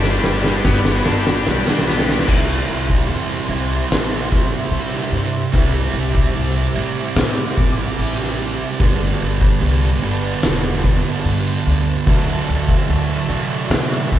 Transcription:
0.00 0.19 G1 loud
0.00 1.06 G2 medium
0.00 0.23 G3 medium
0.00 0.64 B3 medium
0.00 1.04 D4 medium
0.00 2.24 G4 medium
0.00 0.09 G4 medium
0.00 2.24 B4 medium
0.00 2.24 D5 medium
0.00 2.24 B5 medium
0.00 snare loud
0.06 0.14 D4 medium
0.06 0.17 G4 medium
0.10 0.18 D4 medium
0.15 0.21 D4 medium
0.15 0.24 G4 medium
0.22 0.60 G1 loud
0.22 1.46 G3 medium
0.22 0.29 D4 medium
0.22 0.32 G4 medium
0.22 snare loud
0.29 0.37 D4 medium
0.34 0.43 D4 medium
0.34 0.40 G4 medium
0.41 0.51 D4 medium
0.41 0.47 G4 medium
0.41 snare loud
0.48 0.55 G4 medium
0.52 0.59 D4 medium
0.57 0.67 D4 medium
0.57 0.64 G4 medium
0.65 1.01 G1 loud
0.65 1.86 B3 medium
0.65 0.75 D4 medium
0.65 0.70 G4 medium
0.65 kick loud
0.65 snare loud
0.71 0.79 G4 medium
0.75 0.83 D4 medium
0.79 0.89 D4 medium
0.79 0.86 G4 medium
0.85 0.94 G4 medium
0.85 snare loud
0.90 0.97 D4 medium
0.95 1.05 D4 medium
0.95 1.02 G4 medium
1.02 1.42 G1 medium
1.02 1.12 D4 medium
1.02 2.28 D4 medium
1.02 1.10 G4 medium
1.02 snare loud
1.10 1.20 D4 medium
1.10 1.18 G4 medium
1.19 1.28 D4 medium
1.19 1.26 G4 medium
1.27 1.36 D4 medium
1.27 1.34 G4 medium
1.27 snare loud
1.35 1.43 D4 medium
1.35 1.42 G4 medium
1.42 2.18 B1 medium
1.42 1.51 D4 medium
1.42 1.48 G4 medium
1.47 2.28 G3 medium
1.47 1.56 G4 medium
1.47 snare loud
1.51 1.58 D4 medium
1.57 1.66 D4 medium
1.57 1.65 G4 medium
1.66 1.74 D4 medium
1.66 1.73 G4 medium
1.66 snare loud
1.73 1.81 D4 medium
1.73 1.81 G4 medium
1.79 1.89 D4 medium
1.79 1.89 G4 medium
1.79 snare loud
1.87 2.28 B3 medium
1.87 1.96 D4 medium
1.87 1.96 G4 medium
1.87 snare loud
1.96 2.04 D4 medium
1.96 2.03 G4 medium
1.96 snare loud
2.04 2.12 D4 medium
2.04 2.11 G4 medium
2.09 2.20 D4 medium
2.09 2.19 G4 medium
2.09 snare loud
2.19 2.28 D4 medium
2.19 2.27 G4 medium
2.19 snare loud
2.25 2.57 C2 medium
2.25 3.52 C3 loud
2.25 3.52 G3 loud
2.25 12.02 G4 medium
2.25 8.76 C5 medium
2.25 8.75 E5 medium
2.25 5.50 C6 medium
2.25 kick loud
2.25 crash loud
2.29 3.51 C4 loud
2.29 3.50 E4 loud
2.69 2.98 C2 medium
2.90 kick medium
3.08 3.38 E2 loud
3.08 open hi-hat medium
3.49 3.79 C2 loud
3.49 5.52 C3 medium
3.49 5.53 G3 medium
3.49 5.52 C4 medium
3.49 5.52 E4 medium
3.91 4.49 A1 medium
3.91 snare loud
3.91 open hi-hat medium
4.32 kick medium
4.71 5.01 C3 loud
4.71 open hi-hat medium
4.94 snare soft
5.12 5.42 G2 loud
5.52 5.83 C2 loud
5.52 6.73 C3 loud
5.52 6.76 G3 medium
5.52 6.74 C4 loud
5.52 6.74 E4 loud
5.52 8.76 D6 medium
5.52 kick loud
5.52 open hi-hat medium
5.93 6.23 C2 medium
6.15 kick medium
6.34 6.64 C2 loud
6.34 open hi-hat medium
6.75 7.05 A2 medium
6.75 8.78 C3 medium
6.75 8.78 G3 medium
6.75 8.78 C4 medium
6.75 8.77 E4 medium
7.16 7.46 A2 loud
7.16 snare loud
7.16 open hi-hat medium
7.57 7.87 A1 medium
7.57 kick loud
7.99 8.57 A1 medium
7.99 open hi-hat medium
8.19 snare soft
8.78 9.09 G1 loud
8.78 10.00 G2 loud
8.78 10.00 D3 loud
8.78 10.01 G3 loud
8.78 10.01 B3 loud
8.78 12.03 B4 medium
8.78 12.03 D5 medium
8.78 14.19 A5 loud
8.78 kick loud
8.78 open hi-hat medium
8.82 10.02 D4 loud
9.21 9.50 G1 loud
9.41 kick loud
9.61 9.91 C2 loud
9.61 open hi-hat medium
10.02 10.32 G1 loud
10.02 12.05 G2 medium
10.02 12.05 D3 medium
10.02 12.05 G3 medium
10.02 12.05 B3 medium
10.02 12.04 D4 medium
10.43 11.02 E1 loud
10.43 snare loud
10.43 open hi-hat medium
10.84 kick medium
11.25 11.55 G2 loud
11.25 open hi-hat medium
11.67 11.96 D2 loud
12.06 12.36 D2 loud
12.06 13.27 D3 loud
12.06 13.27 F#3 loud
12.06 13.28 A3 medium
12.06 13.28 D4 loud
12.06 14.19 F#4 medium
12.06 14.19 D5 medium
12.06 14.19 E5 medium
12.06 kick loud
12.06 open hi-hat medium
12.49 12.78 D2 loud
12.69 kick loud
12.89 13.18 D2 loud
12.89 open hi-hat medium
13.29 13.59 C3 loud
13.29 14.19 D3 medium
13.29 14.19 F#3 medium
13.29 14.19 A3 medium
13.29 14.19 D4 medium
13.70 14.00 C3 loud
13.70 snare loud
13.70 open hi-hat medium
14.12 14.19 C2 loud
14.12 kick medium

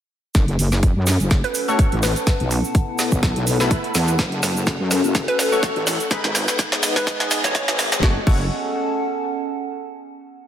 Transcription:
0.35 0.57 F#1 medium
0.35 3.04 C#4 medium
0.35 2.25 F#4 medium
0.35 2.25 A4 medium
0.35 2.25 C#5 medium
0.35 kick loud
0.35 snare soft
0.35 closed hi-hat medium
0.35 cabasa soft
0.48 closed hi-hat soft
0.59 0.94 F#1 medium
0.59 open hi-hat loud
0.59 cabasa medium
0.72 2.95 A4 medium
0.72 snare soft
0.72 cabasa soft
0.83 kick loud
0.83 closed hi-hat medium
0.83 cabasa soft
0.91 6.88 F#5 medium
0.96 1.18 F#2 medium
1.06 snare soft
1.06 open hi-hat medium
1.06 cabasa medium
1.20 1.42 F#1 medium
1.20 6.11 A5 medium
1.20 closed hi-hat soft
1.20 cabasa soft
1.30 kick loud
1.30 snare medium
1.30 closed hi-hat medium
1.30 cabasa soft
1.44 1.58 B4 medium
1.44 closed hi-hat medium
1.54 open hi-hat loud
1.54 cabasa medium
1.68 1.80 A3 medium
1.68 1.80 F#4 medium
1.68 1.80 C#5 loud
1.68 cabasa soft
1.79 kick loud
1.79 closed hi-hat medium
1.79 cabasa soft
1.92 2.14 A1 loud
1.92 closed hi-hat soft
2.03 2.32 B4 medium
2.03 snare medium
2.03 open hi-hat loud
2.03 cabasa medium
2.16 closed hi-hat soft
2.16 cabasa soft
2.27 4.17 B3 medium
2.27 4.96 E4 medium
2.27 4.17 A4 medium
2.27 4.17 E5 medium
2.27 kick loud
2.27 snare medium
2.27 closed hi-hat medium
2.27 cabasa soft
2.40 2.62 B1 loud
2.40 closed hi-hat soft
2.51 open hi-hat loud
2.51 cabasa medium
2.60 4.96 B4 medium
2.64 cabasa soft
2.75 kick loud
2.75 closed hi-hat medium
2.75 cabasa soft
2.98 snare medium
2.98 open hi-hat loud
2.98 cabasa medium
3.12 3.34 B1 medium
3.12 kick medium
3.12 closed hi-hat soft
3.12 cabasa medium
3.23 kick loud
3.23 snare medium
3.23 closed hi-hat medium
3.23 cabasa soft
3.36 3.69 B1 medium
3.36 closed hi-hat soft
3.47 open hi-hat loud
3.47 cabasa medium
3.60 3.72 A3 medium
3.60 3.72 E4 medium
3.60 3.72 B4 loud
3.60 snare medium
3.60 cabasa medium
3.71 kick loud
3.71 closed hi-hat medium
3.71 cabasa soft
3.84 closed hi-hat soft
3.94 4.17 E2 medium
3.94 snare medium
3.94 open hi-hat loud
3.94 cabasa loud
4.08 closed hi-hat soft
4.08 cabasa soft
4.19 4.41 F#1 medium
4.19 6.88 C#4 medium
4.19 6.09 C#4 medium
4.19 6.09 F#4 medium
4.19 6.09 A4 loud
4.19 kick loud
4.19 snare medium
4.19 closed hi-hat medium
4.19 cabasa soft
4.32 closed hi-hat soft
4.43 4.78 F#1 loud
4.43 snare medium
4.43 open hi-hat loud
4.43 cabasa medium
4.57 cabasa medium
4.66 6.11 A4 medium
4.66 kick loud
4.66 snare medium
4.66 closed hi-hat medium
4.66 cabasa soft
4.80 5.02 F#2 medium
4.91 snare medium
4.91 open hi-hat loud
4.91 cabasa loud
5.04 5.26 F#1 loud
5.04 closed hi-hat soft
5.04 cabasa medium
5.15 kick loud
5.15 snare medium
5.15 closed hi-hat medium
5.15 cabasa soft
5.28 5.42 B4 medium
5.28 closed hi-hat soft
5.39 snare medium
5.39 open hi-hat loud
5.39 cabasa medium
5.52 5.64 A3 medium
5.52 5.64 F#4 medium
5.52 5.64 C#5 loud
5.52 cabasa medium
5.63 kick loud
5.63 snare medium
5.63 closed hi-hat medium
5.63 cabasa soft
5.76 5.98 A1 loud
5.76 closed hi-hat soft
5.87 snare medium
5.87 open hi-hat loud
5.87 cabasa medium
6.00 closed hi-hat soft
6.00 cabasa medium
6.10 6.32 G#3 medium
6.10 8.01 G#3 medium
6.10 8.03 B3 medium
6.10 6.32 D#4 medium
6.10 8.01 D#4 medium
6.10 6.32 B4 loud
6.10 8.01 B4 loud
6.10 kick loud
6.10 snare medium
6.10 closed hi-hat medium
6.10 cabasa soft
6.24 6.46 G#1 loud
6.24 8.03 G#4 medium
6.24 8.03 D#5 medium
6.24 snare medium
6.24 closed hi-hat soft
6.35 snare medium
6.35 open hi-hat loud
6.35 cabasa medium
6.48 snare medium
6.48 closed hi-hat soft
6.48 cabasa medium
6.59 kick loud
6.59 snare medium
6.59 closed hi-hat medium
6.59 cabasa soft
6.72 snare medium
6.79 8.03 G#5 medium
6.79 snare loud
6.79 open hi-hat loud
6.79 cabasa loud
6.96 7.10 B4 loud
6.96 kick medium
6.96 snare medium
6.96 open hi-hat medium
6.96 cabasa soft
7.07 kick loud
7.07 snare loud
7.07 closed hi-hat medium
7.07 cabasa soft
7.20 snare medium
7.20 closed hi-hat medium
7.31 snare loud
7.31 open hi-hat loud
7.31 cabasa medium
7.44 7.66 A1 loud
7.44 7.79 C#5 loud
7.44 snare medium
7.44 cabasa medium
7.55 kick loud
7.55 snare loud
7.55 closed hi-hat medium
7.55 cabasa soft
7.68 8.01 G#1 loud
7.68 snare medium
7.68 closed hi-hat soft
7.79 snare loud
7.79 open hi-hat loud
7.79 cabasa medium
7.92 snare loud
7.92 closed hi-hat medium
7.92 cabasa medium
8.03 8.17 F#1 medium
8.03 8.17 A3 medium
8.03 9.91 C#4 medium
8.03 8.17 F#4 medium
8.03 8.17 C#5 medium
8.03 kick loud
8.03 snare medium
8.11 9.91 A4 medium
8.18 9.91 F#5 medium
8.24 8.49 F#1 loud
8.24 8.45 A3 medium
8.24 8.45 F#4 medium
8.24 8.45 C#5 medium
8.24 9.91 A5 medium
8.24 kick loud
8.24 crash medium

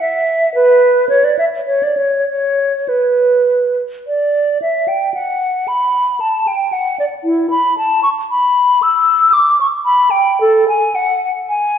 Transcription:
0.01 0.54 E5 medium
0.55 1.09 B4 medium
1.09 1.26 C#5 medium
1.24 1.38 D5 medium
1.39 1.45 E5 medium
1.67 1.85 C#5 medium
1.83 1.99 D5 medium
1.97 2.27 C#5 soft
2.29 2.90 C#5 medium
2.89 3.78 B4 soft
4.07 4.58 D5 medium
4.62 4.90 E5 medium
4.88 5.14 G5 medium
5.14 5.69 F#5 medium
5.68 6.22 B5 medium
6.20 6.49 A5 medium
6.47 6.74 G5 medium
6.73 6.99 F#5 medium
6.99 7.05 D5 medium
7.24 7.50 E4 medium
7.50 7.77 B5 medium
7.78 8.03 A5 medium
8.03 8.09 C#6 medium
8.31 8.84 B5 medium
8.82 9.35 E6 medium
9.33 9.60 D6 medium
9.60 9.66 C#6 medium
9.85 10.12 B5 medium
10.11 10.40 G5 medium
10.41 10.68 A4 medium
10.68 10.97 G#5 medium
10.95 11.31 F#5 medium
11.49 11.78 G#5 medium

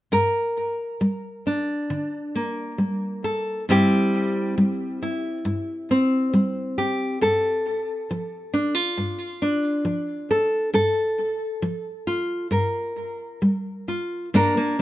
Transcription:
0.12 0.93 G2 medium
0.12 3.24 A#4 soft
1.01 1.82 G3 soft
1.47 3.69 D4 soft
1.90 2.71 D3 soft
2.35 3.69 A#3 soft
2.78 3.59 G3 soft
3.24 3.64 A4 soft
3.69 4.49 G2 medium
3.69 4.56 G3 soft
3.69 5.90 C4 soft
3.69 5.01 E4 soft
3.69 6.77 G4 medium
4.58 5.37 G3 soft
5.03 7.17 E4 soft
5.45 6.24 G2 soft
5.91 7.17 C4 soft
6.33 7.13 G3 soft
6.78 7.22 G4 soft
7.21 8.01 G2 medium
7.21 10.29 A4 medium
8.11 8.89 F3 soft
8.54 8.75 D4 soft
8.75 10.73 F4 soft
8.98 9.76 G2 soft
9.42 10.69 D4 soft
9.85 10.64 F3 soft
10.31 10.69 A4 soft
10.74 11.53 G2 medium
10.74 12.47 A4 medium
11.62 12.43 F3 soft
12.07 12.47 F4 soft
12.51 13.33 G2 medium
12.51 14.28 A#4 soft
13.42 14.25 G3 soft
13.88 14.29 F4 soft
14.34 14.82 G2 medium
14.34 14.56 A#3 soft
14.34 14.78 D4 soft
14.34 14.82 A#4 medium
14.57 14.82 A#3 medium

